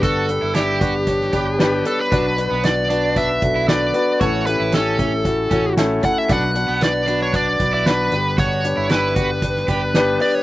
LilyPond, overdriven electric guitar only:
\new Staff \with { instrumentName = "Overdriven electric guitar" } { \time 4/4 \key b \minor \tempo 4 = 115 fis'8 r16 e'16 e'8 fis'16 r8. g'16 r4 r16 | d'16 r8 b16 r8 d'8 d'16 r8 e'16 r4 | fis'8 r16 e'16 cis'8 cis'16 r8. cis'16 r4 r16 | d'16 r8 b16 r8 d'8 d'16 r8 e'16 r4 |
fis'8 r16 e'16 e'8 fis'16 r8. g'16 r4 r16 | }